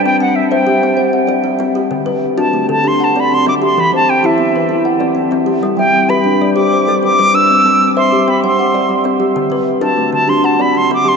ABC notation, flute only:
X:1
M:12/8
L:1/8
Q:3/8=129
K:Clyd
V:1 name="Flute"
g f e g4 z4 z | z3 a2 a c' a b c' d' c' | b a g e4 z4 z | z g2 b3 d'3 d'2 e'- |
e'3 c'2 b c'4 z2 | z3 a2 a c' a b c' d' c' |]